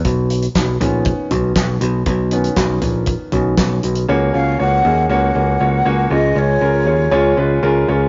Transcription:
<<
  \new Staff \with { instrumentName = "Flute" } { \time 4/4 \key ges \major \tempo 4 = 119 r1 | r1 | r8 f''8 ges''4 ges''2 | ees''8 des''2 r4. | }
  \new Staff \with { instrumentName = "Grand piano" } { \time 4/4 \key ges \major r1 | r1 | <bes des' ges' des''>8 <bes des' ges' des''>8 <bes des' ges' des''>8 <bes des' ges' aes'>8 <bes des' ges' des''>8 <bes des' ges' des''>8 <bes des' ges' des''>8 <bes des' ges' des''>8 | <aes des' f' des''>8 <aes des' f' des''>8 <aes des' f' bes'>8 <aes des' f' des''>8 <aes des' f' des''>8 <aes des' f' ces''>8 <aes des' f' bes'>8 <aes des' f' des''>8 | }
  \new Staff \with { instrumentName = "Grand piano" } { \time 4/4 \key ges \major r4. <ees ces' des'>4. r4 | r8 <ees ces' des'>4. r8 <ees ces' des'>8 r4 | des4. r2 r8 | des4. r2 r8 | }
  \new Staff \with { instrumentName = "Picked electric bass" } { \clef bass \time 4/4 \key ges \major ces,4 ces,8 bes,,8. r16 ces,8 ces,8 ces,8 | ces,4 ces,8 bes,,8. r16 ces,8 ces,8 ces,8 | des,8 des,8 des,8 ees,8 des,8 des,8 des,8 des,8 | des,8 des,8 des,8 ees,8 des,8 des,8 des,8 des,8 | }
  \new DrumStaff \with { instrumentName = "Drums" } \drummode { \time 4/4 <hh bd>8 hh16 hh16 <hc hh bd sn>8 <hh tomfh>8 <hh bd>8 <hh tomfh>8 <hc hh bd sn>8 hh8 | <hh bd>8 hh16 hh16 <hc hh bd sn>8 <hh tomfh>8 <hh bd>8 <hh tomfh>8 <hc hh bd sn>8 hh16 hh16 | r4 r4 r4 r4 | r4 r4 r4 r4 | }
>>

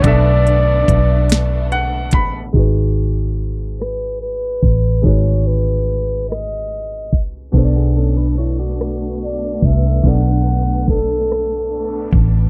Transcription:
<<
  \new Staff \with { instrumentName = "Flugelhorn" } { \time 6/8 \key b \major \tempo 4. = 48 d''2 r4 | r4. b'8 b'4 | cis''8 b'4 dis''4 r8 | r2 d''8 e''8 |
fis''4 a'4. r8 | }
  \new Staff \with { instrumentName = "Clean electric guitar" } { \time 6/8 \key b \major r2. | r2. | r2. | r16 <b gis'>16 <cis' a'>16 <d' b'>16 <e' cis''>16 <fis' d''>4. r16 |
r2. | }
  \new Staff \with { instrumentName = "Grand piano" } { \time 6/8 \key b \major << { r2 fis''8 b''8 | r2. | r2. | r2. |
r2. | } \\ { <b, b d' a' e''>2. | <gis dis' fis' gis' b'>2. | <gis dis' fis' gis' b'>2. | <b, b d' a' bis' d''>2. |
<b, b d' a' d''>2. | } >> }
  \new Staff \with { instrumentName = "String section" } { \time 6/8 \key b \major <a b d'>2. | r2. | r2. | <a b d'>2.~ |
<a b d'>2. | }
  \new Staff \with { instrumentName = "Fingered electric bass" } { \clef bass \time 6/8 \key b \major b,,4 b,,4. a,,8 | gis,,2~ gis,,8 a,,8 | gis,,2~ gis,,8 bis,,8 | b,,2~ b,,8 bis,,8 |
b,,2~ b,,8 a,,8 | }
  \new DrumStaff \with { instrumentName = "Drums" } \drummode { \time 6/8 <hh bd>8 hh8 <hh bd>8 <hh sn>8 hh8 <hh bd>8 | bd4 hh8 <hh ss>4 <hh bd>8 | bd4 hh8 <hh ss>4 <hh bd>8 | bd4. <hh ss>4 <hh bd>8 |
<hh bd>4 <hh bd>8 <hh ss>4 <hh bd>8 | }
>>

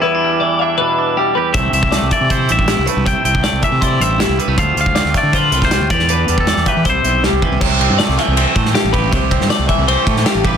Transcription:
<<
  \new Staff \with { instrumentName = "Clean electric guitar" } { \time 4/4 \key c \major \tempo 4 = 158 e'2.~ e'8 r8 | e''8 e''4 d''8 c''8 e''4 r8 | g''8 g''4 e''8 d''8 e''4 r8 | f''8 f''4 d''8 b'8. c''8. d''8~ |
d''8. a'8. b'8 c''4 r4 | r1 | r1 | }
  \new Staff \with { instrumentName = "Clean electric guitar" } { \time 4/4 \key c \major b'4 d''8 e''8 b'4 g'8 b'8 | c''4 d''8 e''8 c''4 g'8 b'8 | c''4 d''8 e''8 c''4 g'8 b'8 | c''4 d''8 e''8 c''4 g'8 b'8 |
b'4 d''8 e''8 c''4 g'8 b'8 | c''4 d''8 e''8 c''4 g'8 b'8 | c''4 d''8 e''8 c''4 g'8 b'8 | }
  \new Staff \with { instrumentName = "Clean electric guitar" } { \time 4/4 \key c \major << { <e g b>16 d'16 g4 d'8 d'8 d'8 g8 g'8 | <e a c' e'>8 c'8 a4 e'8 c'8 e'8 a8 | e'8 c'8 a4 e'8 c'8 e'8 g16 a16 | <a c' f'>8 f'8 c'4 f'8 f'8 f'8 g'8 |
d'8 g4 g'8 e'8 c'8 g4~ | g8 c'8 a4 c'8 a4 g'8 | r8 c'8 a4 c'8 a4 g'8 | } \\ { e,4 e4 b,4. e,8 | c4. e4 g,4. | c4. e4 g,4. | d4. a4 a,4 e,8~ |
e,4 e4 c4. e8 | c4. e4. g,4 | c4. e4. g,4 | } >> }
  \new Staff \with { instrumentName = "Fingered electric bass" } { \clef bass \time 4/4 \key c \major r1 | c,8 c,8. c,16 r16 c8. a,,8. c,16 r16 c,16~ | c,16 r16 c,8. c,16 r16 c8. a,,8. c,16 r16 c,16 | d,8 d,8. d,16 r16 d8. c,8. d,16 e,8~ |
e,8 e,8. e,16 r16 e16 c,8 b,,8. c,16 r16 c,16 | c,8. g,16 r16 c,16 r16 c,8 r16 a,8 r16 a,,8. | c,8. g,16 r16 c,16 r16 c,8 r16 a,8 r16 a,,8. | }
  \new DrumStaff \with { instrumentName = "Drums" } \drummode { \time 4/4 r4 r4 r4 r4 | <hh bd>8 hh16 bd16 <hh sn>8 <hh bd>8 <hh bd>8 hh16 bd16 <hh sn>8 hh8 | <hh bd>8 hh16 bd16 <hh sn>8 <hh bd>8 <hh bd>8 hh8 <hh sn>8 hh8 | <hh bd>8 hh16 bd16 <hh sn>16 sn16 <hh bd sn>8 <hh bd>8 hh16 <bd sn>16 <hh sn>8 <hh bd>16 sn16 |
hh8 hh16 bd16 <hh sn>16 sn16 <hh bd>8 <hh bd>8 hh8 sn8 bd8 | <cymc bd>8 cymr8 <cymr sn>16 sn16 <cymr sn>8 cymr8 <bd cymr>16 sn16 <cymr sn>8 <bd cymr>8 | <bd cymr>8 <bd cymr>16 sn16 <cymr sn>8 <bd cymr>8 cymr8 <bd cymr>16 sn16 <cymr sn>8 <bd cymr>8 | }
>>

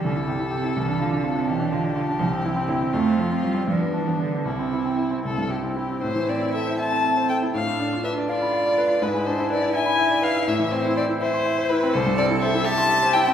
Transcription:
<<
  \new Staff \with { instrumentName = "Violin" } { \time 6/8 \key c \major \tempo 4. = 82 a'2. | g'2. | f'4. d'4. | e'4. a'8 g'8 g'8 |
\key a \minor c''8 d''8 e''8 a''4 g''8 | f''4 e''8 d''4. | b'8 c''8 d''8 gis''4 f''8 | e''8 c''8 d''8 c''4 b'8 |
\key c \major c''8 d''8 e''8 a''4 g''8 | }
  \new Staff \with { instrumentName = "Grand piano" } { \time 6/8 \key c \major c,16 e'16 g'16 e'16 g'16 e'16 c,16 d'16 f'16 d'16 f'16 d'16 | b,,16 d'16 f'16 d'16 f'16 d'16 c,16 c'16 e'16 c'16 e'16 c'16 | f,16 c'16 f'16 c'16 f'16 c'16 g,16 b16 d'16 b16 d'16 b16 | c,16 c'16 e'16 c'16 e'16 c'16 c,16 g,16 e'16 c'16 e'16 c'16 |
\key a \minor a,16 e16 c'16 e'16 a'16 c''16 e''16 a''16 e''16 c''16 a'16 e'16 | a,16 a16 d'16 f'16 b'16 d''16 f''16 b''16 f''16 d''16 b'16 f'16 | gis,16 gis16 d'16 e'16 b'16 d''16 e''16 b''16 e''16 d''16 b'16 e'16 | a,16 e16 c'16 e'16 c''16 e'16 e''16 c'''16 e''16 c''16 e'16 c'16 |
\key c \major c,16 g,16 c'16 e'16 c''16 e'16 e''16 c'''16 e''16 c''16 e'16 c'16 | }
  \new Staff \with { instrumentName = "Cello" } { \clef bass \time 6/8 \key c \major d8 c8 c8 e8 d8 c8 | e8 d8 d8 f8 e8 d8 | a8 f8 g8 f8 e8 d8 | c4. r4. |
\key a \minor e'4. c'4. | d'4. f'4. | e'2.~ | e'4. e'4. |
\key c \major a'4. g'4. | }
>>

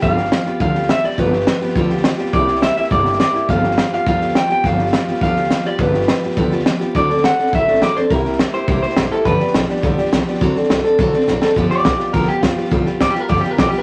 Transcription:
<<
  \new Staff \with { instrumentName = "Clean electric guitar" } { \time 4/4 \key g \mixolydian \tempo 4 = 208 f''2 f''4 e''8 d''8 | b'2. r4 | d''4 e''8 e''8 d''4 d''4 | f''4. f''8 f''4 g''8 g''8 |
f''2 f''4. d''8 | b'2. r4 | d''4 fis''4 e''4 d''8 c''8 | bes'4 r8 c''4 c''4 a'8 |
b'4 r2. | r1 | r8 d''4. bes'8 g'8 f'4 | r4 \tuplet 3/2 { d''8 g'8 bes'8 d''8 g'8 bes'8 d''8 g'8 bes'8 } | }
  \new Staff \with { instrumentName = "Steel-string acoustic guitar" } { \time 4/4 \key g \mixolydian <g, d f b f' g'>8 <f b f' g'>8 <f b f' g'>8 <f b f' g'>8 <g, d f b f' g'>8 <f b f' g'>8 <f b g'>8 <f b f' g'>8 | <g, d f b f' g'>8 <f b f' g'>8 <f b f' g'>8 <f b f' g'>8 <g, d f b f' g'>8 <f b f' g'>8 <f b f' g'>8 <f b f' g'>8 | <c g bes e' g'>8 <bes e' g'>8 <g bes e' g'>8 <bes e' g'>8 <c g bes e' g'>8 <bes e' g'>8 <g bes e' g'>8 <bes e' g'>8 | <g, d f b f' g'>8 <f b f' g'>8 <f b f' g'>8 <f b f' g'>8 <g, d f b f' g'>8 <f b f' g'>8 <f b f' g'>8 <f b f' g'>8 |
<g, d f b f' g'>8 <f b f' g'>8 <f b f' g'>8 <f b f' g'>8 <g, d f b f' g'>8 <f b f' g'>8 <f b f' g'>8 <f b f' g'>8 | <g, d f b f' g'>8 <f b f' g'>8 <f b f' g'>8 <f b f' g'>8 <g, d f b f' g'>8 <f b f' g'>8 <f b f' g'>8 <f b f' g'>8 | <d fis c' d' a'>8 <c' d' a'>8 <fis c' d' a'>8 <c' d' a'>8 <d fis c' d' a'>8 <c' d' a'>8 <fis c' d' a'>8 <c' d' a'>8 | <c g bes e' g'>8 <bes e' g'>8 <g bes e' g'>8 <bes e' g'>8 <c g bes e' g'>8 <bes e' g'>8 <g bes e' g'>8 <bes e' g'>8 |
<g, d f b d' g'>8 <f b d' g'>8 <f b d' g'>8 <f b d' g'>8 <g, d f b d' g'>8 <f b d' g'>8 <f b d' g'>8 <f b d' g'>8 | <d fis c' d' a'>8 <c' d' a'>8 <fis c' d' a'>8 <c' d' a'>8 <d fis c' d' a'>8 <c' d' a'>8 <fis c' d' a'>8 <c' d' a'>8 | <g, d f b f' g'>8 <f b f' g'>8 <f b f'>8 <f b f' g'>8 <g, d f b f' g'>8 <f b f' g'>8 <f b f' g'>8 <f b f' g'>8 | <g, d f b f' g'>8 <f b f' g'>8 <f b f' g'>8 <f b f' g'>8 <g, d f b f' g'>8 <f b f' g'>8 <f b f' g'>8 <f b f' g'>8 | }
  \new Staff \with { instrumentName = "Upright bass" } { \clef bass \time 4/4 \key g \mixolydian g,,4. r8 d,4. r8 | g,,4. r8 d,4. r8 | c,4. r8 g,,4. r8 | g,,4. r8 d,4. r8 |
g,,4. r8 d,4. r8 | g,,4. r8 d,4. r8 | d,4. r8 a,,4. r8 | c,4. r8 bes,,8 r8 a,,8 r8 |
g,,8 r8 a,,8 r8 b,,8 r8 c,8 r8 | d,8 r8 c,8 r8 b,,8 r8 a,,8 r8 | g,,8 r8 b,,8 r8 a,,8 r8 g,,8 r8 | b,,8 r8 a,,8 r8 g,,8 r8 b,,8 r8 | }
  \new DrumStaff \with { instrumentName = "Drums" } \drummode { \time 4/4 <bd sn>8 sn16 sn16 <hhp sn>8 sn8 <bd sn>8 sn16 sn16 <hhp sn>8 sn16 sn16 | <bd sn>8 sn16 sn16 <hhp sn>8 sn16 sn16 <bd sn>8 sn16 sn16 <hhp sn>8 sn16 sn16 | <bd sn>8 sn16 sn16 <hhp sn>8 sn16 sn16 <bd sn>8 sn16 sn16 <hhp sn>8 sn8 | <bd sn>8 sn16 sn16 <hhp sn>8 sn8 <bd sn>8 sn16 sn16 <hhp sn>8 sn8 |
<bd sn>8 sn16 sn16 <hhp sn>8 sn16 sn16 <bd sn>8 sn16 sn16 <hhp sn>8 sn8 | <bd sn>8 sn16 sn16 <hhp sn>8 sn16 sn16 <bd sn>8 sn16 sn16 <hhp sn>8 sn8 | <bd sn>8 sn16 sn16 <hhp sn>8 sn16 sn16 <bd sn>8 sn16 sn16 <hhp sn>8 sn8 | <bd sn>8 sn16 sn16 <hhp sn>8 sn8 <bd sn>8 sn16 sn16 <hhp sn>8 sn8 |
<bd sn>8 sn16 sn16 <hhp sn>8 sn16 sn16 <bd sn>8 sn16 sn16 <hhp sn>8 sn16 sn16 | <bd sn>8 sn16 sn16 <hhp sn>8 sn8 <bd sn>8 sn16 sn16 <hhp sn>8 sn8 | <bd sn>8 sn16 sn16 <hhp bd sn>8 sn8 <bd sn>16 sn16 sn8 <hhp bd sn>8 sn16 sn16 | <bd sn>8 sn8 <hhp bd sn>8 sn8 <bd sn>16 sn16 sn8 <hhp bd sn>8 sn8 | }
>>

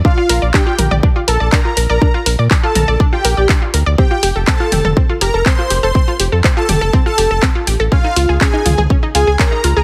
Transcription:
<<
  \new Staff \with { instrumentName = "Supersaw synth" } { \time 4/4 \key bes \lydian \tempo 4 = 122 f''8. r16 g''8. r8. a''8 bes''8 r16 bes''16~ | bes''16 r4 a''8. r16 g''8. r4 | g''8. r16 a''8. r8. bes''8 c'''8 r16 c'''16~ | c'''16 r4 a''8. r16 a''8. r4 |
eis''8. r16 gis''8. r8. gis''8 bes''8 r16 bes''16 | }
  \new Staff \with { instrumentName = "Synth arpeggio sound" } { \time 4/4 \key bes \lydian <d' d''>16 <f' f''>16 <bes' bes''>16 <d'' d'''>16 <d' d''>16 <f' f''>16 <bes' bes''>16 <d'' d'''>16 <d' d''>16 <f' f''>16 <bes' bes''>16 <d'' d'''>16 <d' d''>16 <f' f''>16 <bes' bes''>16 <d'' d'''>16 | <d' d''>16 <f' f''>16 <bes' bes''>16 <d'' d'''>16 <d' d''>16 <f' f''>16 <bes' bes''>16 <d'' d'''>16 <d' d''>16 <f' f''>16 <bes' bes''>16 <d'' d'''>16 <d' d''>16 <f' f''>16 <bes' bes''>16 <d'' d'''>16 | <c' c''>16 <f' f''>16 <g' g''>16 <a' a''>16 <c' c''>16 <f' f''>16 <g' g''>16 <a' a''>16 <c' c''>16 <f' f''>16 <g' g''>16 <a' a''>16 <c' c''>16 <f' f''>16 <g' g''>16 <a' a''>16 | <c' c''>16 <f' f''>16 <g' g''>16 <a' a''>16 <c' c''>16 <f' f''>16 <g' g''>16 <a' a''>16 <c' c''>16 <f' f''>16 <g' g''>16 <a' a''>16 <c' c''>16 <f' f''>16 <g' g''>16 <a' a''>16 |
<cis' cis''>16 <dis' dis''>16 <eis' eis''>16 <gis' gis''>16 <cis' cis''>16 <dis' dis''>16 <eis' eis''>16 <gis' gis''>16 <cis' cis''>16 <dis' dis''>16 <eis' eis''>16 <gis' gis''>16 <cis' cis''>16 <dis' dis''>16 <eis' eis''>16 <gis' gis''>16 | }
  \new Staff \with { instrumentName = "Analog synth lead" } { \time 4/4 \key bes \lydian f'8. r16 g'8. r8. a'8 bes'8 r16 bes'16~ | bes'16 r4 a'8. r16 g'8. r4 | g'8. r16 a'8. r8. bes'8 c''8 r16 c''16~ | c''16 r4 a'8. r16 a'8. r4 |
eis'8. r16 gis'8. r8. gis'8 bes'8 r16 bes'16 | }
  \new Staff \with { instrumentName = "Analog synth bass" } { \clef bass \time 4/4 \key bes \lydian r8 bes,,16 bes,,16 r8 bes,,16 bes,,16 r8 bes,,16 bes,,16 r8 bes,,16 bes,,16 | r8 bes,,16 bes,16 r8 bes,,16 bes,,16 r8 bes,,16 bes,,16 r8 d,16 d,16 | r8 f,,16 f,,16 r8 f,,16 f,,16 r8 f,,16 f,,16 r8 f,,16 f,,16 | r8 f,,16 f,16 r8 f,,16 f,,16 r8 f,,16 f,,16 r8 a,,16 a,,16 |
r8 cis,16 cis,16 r8 cis,16 cis,16 r8 cis,16 cis,16 r8 cis,16 cis,16 | }
  \new DrumStaff \with { instrumentName = "Drums" } \drummode { \time 4/4 bd8 hho8 <hc bd>8 <hho toml>16 toml16 bd8 hho8 <hc bd>8 hho8 | bd8 hho8 <hc bd>8 <hho toml>8 bd8 hho8 <hc bd>8 hho8 | bd8 hho8 <hc bd>8 <hho toml>16 toml16 bd8 hho8 <hc bd>8 hho8 | bd8 hho8 <hc bd>8 <hho toml>8 bd8 hho8 <hc bd>8 hho8 |
bd8 hho8 <hc bd>8 <hho toml>16 toml16 bd8 hho8 <hc bd>8 hho8 | }
>>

